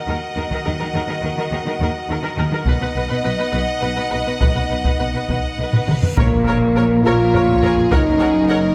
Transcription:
0.00 2.63 A#3 soft
0.00 2.63 F#4 soft
0.00 2.62 D#5 soft
0.00 2.62 F#5 soft
0.07 0.14 D#2 soft
0.07 0.13 D#3 soft
0.07 0.15 A#4 soft
0.36 0.43 D#2 soft
0.36 0.42 D#3 soft
0.36 0.43 A#4 soft
0.51 0.56 D#3 soft
0.51 0.58 A#4 soft
0.51 taiko soft
0.65 0.72 D#2 soft
0.65 0.71 D#3 soft
0.65 0.71 A#4 soft
0.79 0.85 D#3 soft
0.79 0.85 A#4 soft
0.93 1.00 D#2 soft
0.93 0.99 D#3 soft
0.93 1.00 A#4 medium
1.07 1.13 D#3 soft
1.07 1.16 A#4 soft
1.22 1.28 D#2 soft
1.22 1.28 D#3 soft
1.22 1.30 A#4 soft
1.36 1.42 D#3 medium
1.36 1.45 A#4 soft
1.52 1.58 D#2 soft
1.52 1.57 D#3 soft
1.52 1.58 A#4 soft
1.65 1.71 D#3 soft
1.65 1.74 A#4 soft
1.79 1.86 D#2 medium
1.79 1.85 D#3 medium
1.79 1.88 A#4 medium
2.09 2.15 D#2 soft
2.09 2.15 D#3 soft
2.09 2.17 A#4 soft
2.22 2.28 D#3 medium
2.22 2.30 A#4 medium
2.37 2.43 D#2 soft
2.37 2.43 D#3 soft
2.37 2.45 A#4 soft
2.51 2.57 D#3 soft
2.51 2.60 A#4 medium
2.65 2.72 B1 medium
2.65 2.71 B2 medium
2.65 5.84 B3 medium
2.65 5.84 D#4 medium
2.65 2.74 B4 medium
2.65 5.94 D#5 medium
2.65 5.93 F#5 medium
2.65 taiko medium
2.81 2.86 B2 soft
2.81 2.88 B4 soft
2.95 3.01 B1 soft
2.95 3.01 B2 soft
2.95 3.02 B4 soft
3.10 3.15 B2 medium
3.10 3.16 B4 medium
3.24 3.30 B1 soft
3.24 3.30 B2 soft
3.24 3.30 B4 medium
3.39 3.45 B2 soft
3.39 3.45 B4 soft
3.52 3.60 B1 medium
3.52 3.59 B2 medium
3.52 3.58 B4 medium
3.82 3.89 B1 soft
3.82 3.89 B2 soft
3.82 3.88 B4 soft
3.96 4.03 B2 medium
3.96 4.02 B4 medium
4.10 4.18 B1 soft
4.10 4.18 B2 soft
4.10 4.16 B4 soft
4.26 4.33 B2 soft
4.26 4.32 B4 soft
4.41 4.47 B1 soft
4.41 4.47 B2 medium
4.41 4.47 B4 soft
4.41 taiko medium
4.41 reverse cymbal soft
4.55 4.61 B2 soft
4.55 4.61 B4 soft
4.70 4.77 B1 soft
4.70 4.76 B2 soft
4.70 4.76 B4 soft
4.84 4.91 B2 soft
4.84 4.91 B4 soft
4.84 taiko medium
5.00 5.05 B1 soft
5.00 5.06 B2 soft
5.00 5.06 B4 soft
5.14 5.20 B2 soft
5.14 5.20 B4 soft
5.29 5.35 B1 soft
5.29 5.35 B2 soft
5.29 5.36 B4 soft
5.29 taiko medium
5.58 5.64 B1 soft
5.58 5.64 B2 soft
5.58 5.66 B4 soft
5.73 5.79 B2 soft
5.73 5.80 B4 soft
5.73 taiko low-mid medium
5.87 5.94 B1 soft
5.87 5.93 B2 soft
5.87 5.95 B4 soft
5.87 taiko mid medium
6.02 6.08 B2 soft
6.02 6.09 B4 soft
6.02 taiko low medium
6.17 6.96 A#1 medium
6.17 6.95 A#2 medium
6.17 7.02 A#3 medium
6.17 6.25 A#4 medium
6.17 6.27 C#5 medium
6.17 taiko loud
6.17 impact medium
6.47 6.55 A#4 medium
6.47 6.57 C#5 medium
6.76 6.84 A#4 medium
6.76 6.86 C#5 medium
7.05 7.83 A#1 medium
7.05 7.82 A#2 medium
7.05 7.92 F4 loud
7.05 7.32 A#4 medium
7.05 7.15 A#4 medium
7.05 7.14 C#5 medium
7.34 7.43 A#4 medium
7.34 7.64 C#5 medium
7.34 7.44 C#5 medium
7.34 taiko low medium
7.49 taiko medium
7.63 7.92 G#4 medium
7.63 7.71 A#4 medium
7.63 7.73 C#5 medium
7.63 taiko low medium
7.77 taiko low soft
7.92 8.69 F#1 medium
7.92 8.68 F#2 medium
7.92 8.75 D#4 loud
7.92 8.00 A#4 medium
7.92 8.22 A#4 medium
7.92 8.01 C#5 medium
7.92 8.01 F#5 medium
7.92 taiko loud
8.19 8.50 G#4 medium
8.19 8.29 A#4 medium
8.19 8.27 C#5 medium
8.19 8.28 F#5 medium
8.49 8.75 A#4 medium
8.49 8.58 A#4 medium
8.49 8.58 C#5 medium
8.49 8.57 F#5 medium

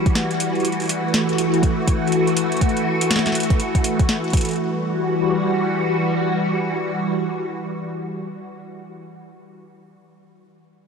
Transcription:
0.00 4.54 E3 medium
0.00 0.61 G3 medium
0.00 0.60 F#4 medium
0.06 kick loud
0.06 closed hi-hat soft
0.15 snare loud
0.15 closed hi-hat medium
0.31 closed hi-hat soft
0.40 closed hi-hat medium
0.55 closed hi-hat soft
0.60 closed hi-hat soft
0.65 4.54 A3 medium
0.65 4.54 F#4 medium
0.65 closed hi-hat medium
0.72 closed hi-hat soft
0.80 closed hi-hat soft
0.82 closed hi-hat soft
0.84 closed hi-hat soft
0.85 closed hi-hat soft
0.87 closed hi-hat soft
0.89 closed hi-hat medium
1.14 snare loud
1.14 closed hi-hat medium
1.29 closed hi-hat soft
1.38 closed hi-hat medium
1.54 closed hi-hat soft
1.63 kick medium
1.63 closed hi-hat medium
1.88 kick loud
1.88 closed hi-hat medium
2.07 closed hi-hat soft
2.12 closed hi-hat medium
2.27 closed hi-hat soft
2.37 closed hi-hat medium
2.52 closed hi-hat soft
2.57 closed hi-hat soft
2.61 kick medium
2.61 closed hi-hat medium
2.69 closed hi-hat soft
2.77 closed hi-hat soft
3.01 closed hi-hat medium
3.11 snare loud
3.11 closed hi-hat medium
3.16 snare medium
3.19 snare medium
3.26 snare medium
3.26 snare soft
3.26 closed hi-hat soft
3.32 snare soft
3.32 closed hi-hat medium
3.40 closed hi-hat medium
3.43 closed hi-hat medium
3.50 kick loud
3.50 closed hi-hat soft
3.60 closed hi-hat medium
3.75 kick medium
3.75 closed hi-hat soft
3.84 closed hi-hat medium
3.99 kick loud
3.99 closed hi-hat soft
4.09 snare loud
4.09 closed hi-hat medium
4.24 closed hi-hat soft
4.30 kick loud
4.30 closed hi-hat soft
4.33 closed hi-hat medium
4.37 closed hi-hat medium
4.37 closed hi-hat soft
4.41 closed hi-hat medium
4.45 closed hi-hat soft
4.49 closed hi-hat soft
4.51 closed hi-hat soft
4.53 closed hi-hat soft
4.56 8.51 E3 medium
4.56 8.51 G3 medium
4.56 8.51 F#4 medium
4.56 closed hi-hat soft

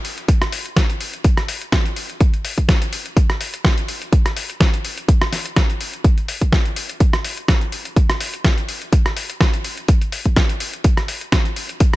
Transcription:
0.05 open hi-hat medium
0.18 closed hi-hat soft
0.28 kick loud
0.28 closed hi-hat medium
0.42 cross-stick medium
0.42 closed hi-hat soft
0.52 open hi-hat loud
0.66 closed hi-hat soft
0.77 kick loud
0.77 snare loud
0.77 closed hi-hat medium
0.90 closed hi-hat soft
1.01 open hi-hat medium
1.14 closed hi-hat soft
1.24 kick loud
1.24 closed hi-hat medium
1.37 cross-stick medium
1.37 closed hi-hat soft
1.48 open hi-hat loud
1.62 closed hi-hat soft
1.72 kick loud
1.72 cross-stick medium
1.72 snare loud
1.72 closed hi-hat medium
1.85 closed hi-hat soft
1.96 open hi-hat medium
2.10 closed hi-hat soft
2.21 kick loud
2.21 closed hi-hat medium
2.34 closed hi-hat soft
2.45 open hi-hat loud
2.58 kick medium
2.58 closed hi-hat soft
2.69 kick loud
2.69 snare loud
2.69 closed hi-hat medium
2.82 closed hi-hat soft
2.93 open hi-hat medium
3.06 closed hi-hat soft
3.17 kick loud
3.17 closed hi-hat medium
3.30 cross-stick medium
3.30 closed hi-hat soft
3.41 open hi-hat loud
3.54 closed hi-hat soft
3.65 kick loud
3.65 cross-stick medium
3.65 snare loud
3.65 closed hi-hat medium
3.78 closed hi-hat soft
3.88 open hi-hat loud
4.02 closed hi-hat soft
4.13 kick loud
4.13 closed hi-hat medium
4.26 cross-stick medium
4.26 closed hi-hat soft
4.36 open hi-hat loud
4.50 closed hi-hat soft
4.61 kick loud
4.61 snare loud
4.61 closed hi-hat medium
4.74 closed hi-hat soft
4.85 open hi-hat medium
4.98 closed hi-hat soft
5.09 kick loud
5.09 closed hi-hat medium
5.22 cross-stick medium
5.22 closed hi-hat soft
5.33 snare soft
5.33 open hi-hat loud
5.46 closed hi-hat soft
5.56 kick loud
5.56 cross-stick medium
5.56 snare loud
5.56 closed hi-hat medium
5.70 closed hi-hat soft
5.81 open hi-hat medium
5.94 closed hi-hat soft
6.04 kick loud
6.04 closed hi-hat medium
6.18 closed hi-hat soft
6.28 open hi-hat loud
6.42 kick medium
6.42 closed hi-hat soft
6.52 kick loud
6.52 snare loud
6.52 closed hi-hat medium
6.65 closed hi-hat soft
6.76 open hi-hat medium
6.89 closed hi-hat soft
7.00 kick loud
7.00 closed hi-hat medium
7.13 cross-stick medium
7.13 closed hi-hat soft
7.24 open hi-hat loud
7.37 closed hi-hat soft
7.48 kick loud
7.48 cross-stick medium
7.48 snare loud
7.48 closed hi-hat medium
7.61 closed hi-hat soft
7.72 open hi-hat medium
7.85 closed hi-hat soft
7.96 kick loud
7.96 closed hi-hat medium
8.10 cross-stick medium
8.10 closed hi-hat soft
8.20 open hi-hat loud
8.34 closed hi-hat soft
8.44 kick loud
8.44 snare loud
8.44 closed hi-hat medium
8.58 closed hi-hat soft
8.69 open hi-hat medium
8.82 closed hi-hat soft
8.93 kick loud
8.93 closed hi-hat medium
9.06 cross-stick medium
9.06 closed hi-hat soft
9.17 open hi-hat loud
9.30 closed hi-hat soft
9.41 kick loud
9.41 cross-stick medium
9.41 snare loud
9.41 closed hi-hat medium
9.54 closed hi-hat soft
9.64 open hi-hat medium
9.78 closed hi-hat soft
9.88 kick loud
9.88 closed hi-hat medium
10.01 closed hi-hat soft
10.12 open hi-hat loud
10.25 kick medium
10.25 closed hi-hat soft
10.36 kick loud
10.36 snare loud
10.36 closed hi-hat medium
10.49 closed hi-hat soft
10.60 open hi-hat medium
10.73 closed hi-hat soft
10.84 kick loud
10.84 closed hi-hat medium
10.97 cross-stick medium
10.97 closed hi-hat soft
11.08 open hi-hat loud
11.21 closed hi-hat soft
11.32 kick loud
11.32 cross-stick medium
11.32 snare loud
11.32 closed hi-hat medium
11.45 closed hi-hat soft
11.56 open hi-hat medium
11.69 closed hi-hat soft
11.80 kick loud
11.80 closed hi-hat loud

